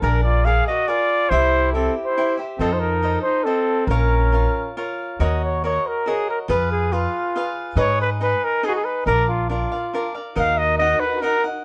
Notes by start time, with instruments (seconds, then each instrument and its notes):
0.02 upright bass A#1, trumpet D4 A#4, cavaquinho G#4 A#4 D5 F5
0.23 trumpet F4 D5
0.45 cavaquinho G#4 A#4 D5 F5, trumpet G#4 F5
0.67 trumpet F#4 D#5, cavaquinho A#4 D5 F5
0.88 trumpet F4 D5, cavaquinho G#4 A#4 D5 F5
1.29 upright bass C2, trumpet E4 C5, cavaquinho E4 G4 C5 E5
1.73 trumpet C4 A4, cavaquinho E4 G4 C5 E5
2.05 trumpet E4 C5
2.17 cavaquinho E4 G4 C5 E5
2.37 cavaquinho G4 C5 E5
2.59 upright bass F2, trumpet C4 A4, cavaquinho F4 A4 C5 D#5
2.73 trumpet D#4 C5
2.80 trumpet D#4 A#4
3.02 cavaquinho F4 A4 C5 D#5
3.22 trumpet D#4 C5
3.43 trumpet C4 A4, cavaquinho F4 A4 C5 D#5
3.87 upright bass A#1, trumpet C#4 A#4, cavaquinho F4 A#4 C#5
3.91 cavaquinho F5
4.32 cavaquinho F4 A#4 C#5 F5
4.77 cavaquinho F4 A#4 C#5 F5
5.20 upright bass D#2, cavaquinho F#4 A#4 C#5 D#5, trumpet D#5
5.45 trumpet C#5
5.64 cavaquinho F#4 A#4 C#5 D#5, trumpet C#5
5.87 trumpet A#4
6.06 cavaquinho F#4 A#4 C#5 D#5, trumpet G#4
6.30 trumpet A#4
6.48 upright bass F2, cavaquinho F4 G#4 B4 F5, trumpet B4
6.71 trumpet G#4
6.92 cavaquinho F4 G#4 B4 F5, trumpet F4
7.36 cavaquinho F4 G#4 B4 F5
7.76 upright bass G#2, cavaquinho D#4 G#4 B4 D#5, trumpet C#5
8.01 trumpet B4
8.21 cavaquinho D#4 G#4 B4 D#5, trumpet B4
8.44 trumpet A#4
8.63 cavaquinho D#4 G#4 B4 D#5, trumpet G#4
8.68 trumpet F#4
8.75 trumpet G#4
8.85 trumpet B4
9.06 upright bass A#1, cavaquinho D4 A#4 D5 F5, trumpet A#4
9.28 trumpet F4
9.49 cavaquinho D4 A#4 D5 F5, trumpet F4
9.71 cavaquinho A#4 D5 F5
9.93 cavaquinho D4 A#4 D5 F5
10.15 cavaquinho A#4 D5 F5
10.36 upright bass D#2, cavaquinho D#4 A#4 D#5 F#5, violin section D#4 F#4 A#4, trumpet F5
10.58 trumpet D#5
10.78 cavaquinho D#4 A#4 D#5 F#5, trumpet D#5
11.00 trumpet B4
11.22 cavaquinho D#4 A#4 D#5 F#5, trumpet A#4
11.44 cavaquinho A#4 D#5 F#5